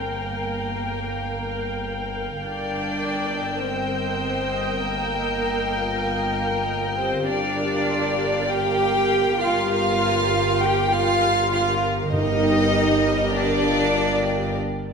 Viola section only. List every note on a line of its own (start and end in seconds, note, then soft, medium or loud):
0.00 2.39 A#4 soft
0.00 2.39 G5 soft
2.41 7.23 A#4 soft
2.41 7.23 G5 soft
7.27 12.08 G4 medium
7.27 12.09 A#4 medium
12.11 14.51 G4 medium
12.11 14.50 A#4 medium